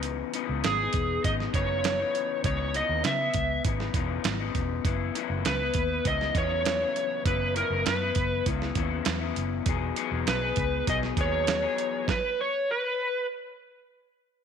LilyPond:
<<
  \new Staff \with { instrumentName = "Electric slide guitar" } { \time 4/4 \key cis \dorian \tempo 4 = 100 r4 gis'4 dis''8 cis''4. | cis''8 dis''8 e''4 r2 | r4 b'4 dis''8 cis''4. | b'8 ais'8 b'4 r2 |
r4 b'4 dis''8 cis''4. | b'8 cis''8 b'4 r2 | }
  \new Staff \with { instrumentName = "Clean electric guitar" } { \time 4/4 \key cis \dorian <cis e b dis'>8 <cis e b dis'>8. <e b dis'>8. <cis e b dis'>8 <cis e b dis'>8. <cis e b dis'>8. | <cis e b dis'>8 <cis e b dis'>8. <e b>8. <cis e b dis'>8 <cis e b dis'>8. <cis e b dis'>8. | <cis e b e'>8 <fis, cis e b e'>8. <b e'>8. <cis e b e'>8 <fis, cis e b e'>8. <fis, cis e b e'>8. | <cis e b e'>8 <fis, cis e b e'>8. <e b e'>8. <cis e b e'>8 <fis, cis b e'>8. <fis, cis e b e'>8. |
<fis b dis' gis'>8 <e fis b dis' gis'>8. <b dis' gis'>8. <fis b dis' gis'>8 <fis b dis' gis'>8. <e fis b dis' gis'>8. | r1 | }
  \new Staff \with { instrumentName = "Fingered electric bass" } { \clef bass \time 4/4 \key cis \dorian cis,8 r16 cis,16 gis,,8 e,,8 gis,,8 fis,,4 r8 | cis,8. dis,16 cis8 cis,8 gis,,8 e,,8 gis,,8 e,,8 | fis,,8 r16 fis,,16 cis,8 dis,8 cis,8 e,4 r8 | fis,,8. fis,,16 fis,8 fis,,8 cis,8 dis,8 e,8 fis,,8 |
e,,8 r16 e,,16 b,,8 cis,8 b,,8 dis,4 r8 | r1 | }
  \new DrumStaff \with { instrumentName = "Drums" } \drummode { \time 4/4 hh8 hh8 <hh sn>8 <hh bd>8 <hh bd>16 sn16 <hh bd>8 <hh sn>8 hh8 | <hh bd>8 hh8 <hh sn>8 <hh bd>8 <hh bd>16 sn16 <hh bd>8 <hh sn>8 <hh bd>8 | <hh bd>8 hh8 <hh sn>8 <hh bd>8 <hh bd>16 sn16 <hh bd>8 <hh sn>8 hh8 | <hh bd>8 hh8 <hh sn>8 <hh bd>8 <hh bd>16 sn16 <hh bd>8 <hh sn>8 hh8 |
<hh bd>8 hh8 <hh sn>8 <hh bd>8 <hh bd>16 sn16 <hh bd>8 <hh sn>8 hh8 | <bd sn>4 r4 r4 r4 | }
>>